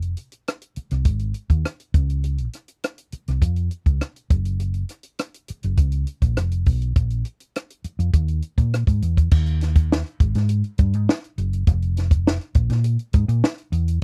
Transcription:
0.00 0.14 F1 medium
0.00 closed hi-hat soft
0.17 closed hi-hat medium
0.32 closed hi-hat soft
0.48 cross-stick medium
0.48 closed hi-hat medium
0.62 closed hi-hat medium
0.76 muted fingered electric bass stroke soft
0.76 closed hi-hat medium
0.91 1.04 C2 medium
0.91 cross-stick soft
0.91 closed hi-hat soft
1.05 1.32 G#1 medium
1.05 kick medium
1.05 closed hi-hat medium
1.19 closed hi-hat soft
1.34 closed hi-hat medium
1.50 1.63 D#2 medium
1.50 kick medium
1.50 closed hi-hat soft
1.65 cross-stick loud
1.65 closed hi-hat medium
1.80 closed hi-hat soft
1.94 2.47 C#2 medium
1.94 kick medium
1.94 closed hi-hat medium
2.10 closed hi-hat soft
2.24 closed hi-hat medium
2.38 closed hi-hat soft
2.53 cross-stick soft
2.53 closed hi-hat medium
2.68 closed hi-hat soft
2.84 cross-stick loud
2.84 closed hi-hat medium
2.98 closed hi-hat medium
3.12 muted fingered electric bass stroke soft
3.12 closed hi-hat medium
3.28 3.41 C2 medium
3.28 cross-stick soft
3.28 closed hi-hat soft
3.42 3.68 F2 medium
3.42 kick medium
3.42 closed hi-hat medium
3.56 closed hi-hat soft
3.71 closed hi-hat medium
3.86 3.99 C#2 medium
3.86 kick medium
3.86 closed hi-hat soft
4.01 cross-stick medium
4.01 closed hi-hat medium
4.16 closed hi-hat soft
4.30 4.83 F#1 medium
4.30 kick loud
4.30 closed hi-hat medium
4.45 closed hi-hat soft
4.60 closed hi-hat medium
4.74 closed hi-hat soft
4.89 cross-stick soft
4.89 closed hi-hat medium
5.03 closed hi-hat soft
5.19 cross-stick loud
5.19 closed hi-hat medium
5.34 closed hi-hat medium
5.48 muted fingered electric bass stroke soft
5.48 closed hi-hat medium
5.63 5.77 F#1 medium
5.63 closed hi-hat soft
5.77 6.04 C#2 medium
5.77 kick medium
5.77 closed hi-hat medium
5.92 closed hi-hat soft
6.07 closed hi-hat medium
6.22 6.35 A#1 medium
6.22 kick medium
6.22 closed hi-hat soft
6.37 6.63 F1 medium
6.37 cross-stick loud
6.37 closed hi-hat medium
6.52 closed hi-hat soft
6.66 6.93 B1 medium
6.66 kick medium
6.66 open hi-hat soft
6.82 closed hi-hat soft
6.96 7.22 A#1 medium
6.96 kick loud
6.96 closed hi-hat medium
7.10 closed hi-hat soft
7.25 closed hi-hat medium
7.40 closed hi-hat soft
7.56 cross-stick loud
7.56 closed hi-hat medium
7.70 closed hi-hat medium
7.84 muted fingered electric bass stroke soft
7.84 closed hi-hat medium
7.99 8.12 F2 medium
7.99 closed hi-hat soft
8.13 8.40 D#2 medium
8.13 kick medium
8.13 closed hi-hat medium
8.28 closed hi-hat soft
8.42 closed hi-hat soft
8.58 8.84 A#2 medium
8.58 kick medium
8.58 closed hi-hat soft
8.74 cross-stick medium
8.74 closed hi-hat medium
8.87 9.01 G#2 medium
8.87 kick medium
8.87 closed hi-hat soft
9.02 9.28 E2 medium
9.02 closed hi-hat medium
9.17 kick medium
9.17 closed hi-hat soft
9.31 10.02 D#2 loud
9.31 kick loud
9.31 crash medium
9.46 closed hi-hat soft
9.61 snare soft
9.61 closed hi-hat medium
9.75 kick medium
9.75 closed hi-hat medium
9.92 snare loud
10.06 closed hi-hat soft
10.20 10.33 G#1 medium
10.20 kick loud
10.20 closed hi-hat medium
10.35 10.61 G#2 medium
10.35 snare soft
10.35 closed hi-hat medium
10.49 closed hi-hat medium
10.64 closed hi-hat soft
10.78 10.94 G2 medium
10.78 kick medium
10.78 closed hi-hat medium
10.93 11.07 G#2 medium
10.93 closed hi-hat soft
11.09 snare loud
11.24 closed hi-hat soft
11.38 11.64 F#1 medium
11.38 closed hi-hat medium
11.53 closed hi-hat medium
11.67 12.37 F1 loud
11.67 kick loud
11.67 closed hi-hat medium
11.82 closed hi-hat soft
11.97 snare soft
11.97 closed hi-hat medium
12.11 kick medium
12.11 closed hi-hat medium
12.27 snare loud
12.41 closed hi-hat soft
12.55 12.68 A#1 medium
12.55 kick loud
12.55 closed hi-hat medium
12.70 12.96 A#2 medium
12.70 snare soft
12.70 closed hi-hat medium
12.84 closed hi-hat medium
12.99 closed hi-hat soft
13.13 13.27 G#2 loud
13.13 kick medium
13.13 closed hi-hat medium
13.28 13.42 A#2 loud
13.28 closed hi-hat soft
13.44 snare loud
13.58 closed hi-hat soft
13.72 13.99 E2 medium
13.72 closed hi-hat medium
13.88 closed hi-hat medium

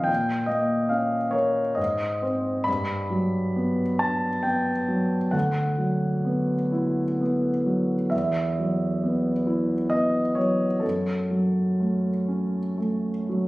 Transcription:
0.00 0.11 F3 soft
0.00 0.12 C4 soft
0.00 0.11 D#4 soft
0.00 0.11 D#5 medium
0.00 0.11 F5 medium
0.00 0.04 G5 medium
0.00 0.48 G5 medium
0.06 1.73 A#2 soft
0.46 1.15 A#3 soft
0.46 0.89 D#5 medium
0.89 1.60 C#4 soft
0.89 1.33 F5 soft
1.31 1.78 A#4 soft
1.31 1.77 C#5 medium
1.75 2.64 G#2 soft
1.75 2.21 D#5 medium
2.22 2.63 C4 soft
2.22 2.63 C5 soft
2.64 5.29 G2 soft
2.64 3.99 B5 medium
3.10 3.82 F#3 soft
3.56 4.28 B3 soft
3.99 4.72 D4 soft
3.99 4.45 A5 medium
4.43 5.16 B3 soft
4.43 5.32 G5 medium
4.88 5.33 F#3 soft
5.31 8.08 D2 soft
5.31 7.20 F#5 medium
5.78 6.54 F#3 soft
6.25 7.02 B3 soft
6.72 7.48 E4 soft
7.21 7.94 B3 soft
7.66 8.12 F#3 soft
8.10 10.79 E2 soft
8.10 9.91 E5 medium
8.59 9.31 F#3 soft
9.04 9.75 B3 soft
9.47 10.19 E4 soft
9.90 10.64 B3 soft
9.90 10.36 D#5 medium
10.35 10.83 F#3 soft
10.35 10.82 C#5 medium
10.80 13.48 F#2 soft
10.80 12.78 A4 soft
11.31 12.10 F#3 soft
11.80 12.59 A3 soft
12.28 13.09 C#4 soft
12.78 13.48 A3 soft
13.29 13.48 F#3 soft

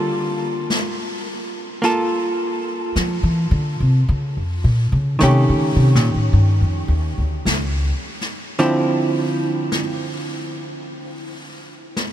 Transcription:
0.00 0.66 D3 medium
0.00 4.05 G3 soft
0.00 1.81 A#3 soft
0.00 1.83 F4 soft
0.00 1.84 A4 soft
0.70 brush sweep soft
0.70 snare soft
1.82 4.07 A#3 soft
1.82 4.08 F4 soft
1.82 4.08 A4 soft
1.82 brush sweep soft
1.82 snare soft
2.96 3.23 F3 medium
2.96 brush sweep soft
2.96 snare soft
3.23 3.51 E3 medium
3.51 3.78 D3 medium
3.80 4.02 C3 medium
4.08 4.36 C#3 medium
4.08 brush sweep soft
4.37 4.64 F2 soft
4.64 4.91 A#2 medium
4.92 5.14 C#3 medium
5.19 5.49 C3 medium
5.19 8.58 D#3 soft
5.19 8.58 A3 soft
5.19 8.59 C#4 soft
5.19 brush sweep soft
5.19 snare soft
5.24 8.60 G4 soft
5.49 5.75 C#3 medium
5.76 5.95 C3 medium
5.95 6.14 A#2 medium
5.95 snare soft
6.15 6.29 A2 medium
6.33 6.60 G2 medium
6.33 brush sweep soft
6.61 6.88 F2 medium
6.88 7.16 D#2 medium
7.18 7.40 D2 medium
7.45 7.91 C#2 medium
7.45 brush sweep soft
7.45 snare soft
8.21 snare soft
8.58 12.13 D3 soft
8.58 12.13 F3 soft
8.58 12.13 C4 soft
8.58 12.13 E4 soft
8.58 brush sweep soft
8.58 snare soft
9.72 brush sweep soft
9.72 snare soft
10.84 brush sweep soft
11.97 brush sweep soft
11.97 snare soft

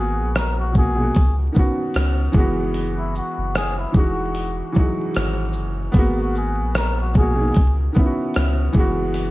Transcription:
0.00 0.19 G#1 loud
0.00 0.57 G#3 medium
0.00 0.58 A#3 medium
0.00 0.56 B3 medium
0.00 0.63 F#4 loud
0.00 0.32 G#4 medium
0.17 1.11 A#1 medium
0.35 0.56 A#4 medium
0.35 cross-stick loud
0.35 closed hi-hat medium
0.59 0.79 F#4 medium
0.72 0.92 B2 medium
0.72 0.93 G#3 medium
0.72 kick medium
0.72 shaker soft
0.77 0.94 A#3 medium
0.77 0.95 F#4 medium
0.77 1.35 G#4 medium
0.95 1.14 B2 medium
0.95 1.15 G#3 medium
0.99 1.16 A#3 medium
0.99 1.17 F#4 medium
1.15 1.49 C#2 loud
1.15 kick medium
1.15 closed hi-hat medium
1.52 2.33 D#3 medium
1.52 2.34 B3 medium
1.52 shaker soft
1.56 2.36 C#4 medium
1.56 2.37 F#4 loud
1.56 kick medium
1.94 2.28 C#2 loud
1.94 cross-stick loud
1.94 closed hi-hat medium
2.32 3.20 F#1 loud
2.32 3.69 E3 loud
2.32 3.70 G#3 medium
2.32 kick loud
2.32 shaker soft
2.37 3.72 B3 medium
2.37 3.73 F#4 loud
2.74 closed hi-hat medium
2.98 3.14 E4 medium
3.15 3.58 F#4 medium
3.15 shaker soft
3.38 3.86 F#1 loud
3.55 3.75 G#4 medium
3.55 cross-stick loud
3.55 closed hi-hat medium
3.79 3.94 E4 medium
3.92 4.62 E1 loud
3.92 4.62 E3 medium
3.92 4.63 G#3 medium
3.92 kick loud
3.92 shaker soft
3.96 4.64 D#4 medium
3.96 4.54 F#4 medium
3.96 4.65 F#4 medium
4.35 closed hi-hat medium
4.72 5.76 E3 medium
4.72 4.82 F#3 medium
4.72 shaker soft
4.76 5.78 D#4 medium
4.76 5.80 F#4 medium
4.76 kick medium
4.81 5.81 G#3 medium
5.15 5.58 G#1 loud
5.15 cross-stick loud
5.15 closed hi-hat medium
5.53 5.89 F#1 loud
5.53 shaker soft
5.92 6.60 G#1 loud
5.92 6.97 G#3 medium
5.92 6.96 B3 loud
5.92 kick loud
5.92 closed hi-hat medium
5.96 6.98 A#3 medium
5.96 6.99 F#4 loud
6.19 6.34 F#4 medium
6.36 6.72 G#4 medium
6.36 shaker soft
6.58 7.51 A#1 medium
6.75 6.96 A#4 medium
6.75 cross-stick loud
6.75 closed hi-hat medium
7.00 7.15 F#4 medium
7.13 7.33 B2 medium
7.13 7.34 G#3 medium
7.13 7.74 G#4 medium
7.13 kick medium
7.13 shaker soft
7.18 7.35 A#3 medium
7.18 7.36 F#4 medium
7.34 7.53 B2 medium
7.34 7.54 G#3 medium
7.39 7.56 A#3 medium
7.39 7.57 D#4 medium
7.54 7.90 C#2 medium
7.54 kick medium
7.54 closed hi-hat medium
7.92 8.73 D#3 medium
7.92 8.75 B3 medium
7.92 shaker soft
7.96 8.76 C#4 medium
7.96 8.04 E4 medium
7.96 kick medium
8.06 8.78 F#4 medium
8.34 8.69 C#2 loud
8.34 cross-stick loud
8.34 closed hi-hat medium
8.73 9.31 F#1 loud
8.73 9.31 E3 loud
8.73 9.31 G#3 medium
8.73 kick loud
8.73 shaker soft
8.77 9.31 B3 medium
8.77 9.31 F#4 loud
9.14 closed hi-hat medium

